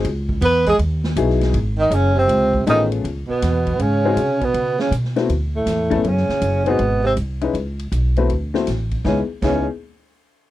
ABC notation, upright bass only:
X:1
M:4/4
L:1/8
Q:"Swing" 1/4=160
K:C#m
V:1 name="Upright bass" clef=bass
C,,2 E,,2 D,,2 B,,,2 | G,,,2 F,,,2 C,,2 A,,,2 | C,, z E,,2 G,,2 ^B,,2 | C,2 B,,2 =D,,2 E,,2 |
F,, z F,,,2 G,,,2 ^B,,,2 | C,,2 B,,,2 =D,,2 A,,,2 | C,, z C,, z4 z |]